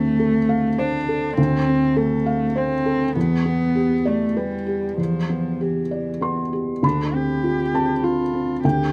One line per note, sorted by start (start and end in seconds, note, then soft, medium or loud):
0.00 1.34 D2 soft
0.00 0.80 A3 medium
0.00 0.38 C4 soft
0.19 0.67 A4 soft
0.49 0.96 F5 soft
0.78 1.37 D4 medium
0.78 1.26 C5 soft
1.09 1.56 A4 soft
1.37 3.12 D2 medium
1.37 1.98 C4 medium
1.68 2.15 C4 soft
1.96 2.58 A3 medium
1.96 2.44 A4 soft
2.26 2.74 F5 soft
2.56 3.16 C4 medium
2.56 3.03 C5 soft
2.86 3.16 A4 soft
3.16 4.94 E2 medium
3.16 4.09 B3 medium
3.46 3.94 B3 soft
3.75 4.24 G4 soft
4.05 4.38 A3 medium
4.05 4.54 D5 soft
4.37 4.98 G3 medium
4.37 4.86 B4 soft
4.67 5.17 G4 soft
4.98 6.79 E2 soft
4.98 5.62 F3 medium
5.29 5.79 B3 soft
5.61 6.53 E3 soft
5.61 6.10 G4 soft
5.91 6.40 D5 soft
6.21 6.71 B3 soft
6.21 6.80 C6 soft
6.53 6.83 G4 soft
6.83 8.59 D2 soft
6.83 7.15 D4 soft
6.83 7.70 B5 medium
7.14 7.62 C4 soft
7.14 8.05 G4 soft
7.43 7.92 F4 soft
7.73 8.22 C4 soft
7.73 8.60 A5 medium
8.03 8.63 F4 soft
8.03 8.52 F4 soft
8.34 8.82 C4 soft
8.64 8.93 D2 soft
8.64 8.93 G4 soft
8.64 8.93 G5 soft